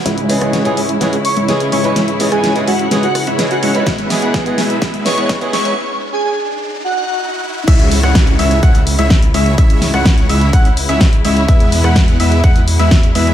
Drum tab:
CC |----------------|----------------|----------------|----------------|
HH |xxoxxxoxxxoxxxox|xxoxxxoxxxoxxxox|xxoxxxoxxxoxxxox|----------------|
SD |o--ro---o---o---|o--ro---o-r-o---|o-o-o-o-o-o-o-o-|----------------|
BD |----------------|----------------|o---o---o---o---|----------------|

CC |x---------------|----------------|----------------|
HH |xxoxxxoxxxoxxxox|xxoxxxoxxxoxxxox|xxoxxxoxxxoxxxox|
SD |---ro-------o---|--oro-------o---|---ro-------o---|
BD |o---o---o---o---|o---o---o---o---|o---o---o---o---|